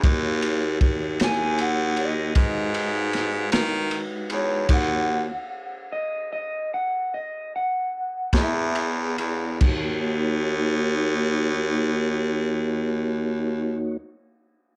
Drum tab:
CC |------------|x-----------|x-----------|
RD |xxxxxxxxxxxx|x--------xxx|------------|
SD |---o----oo--|---------o--|------------|
BD |o-o---o-----|o--------o--|o-----------|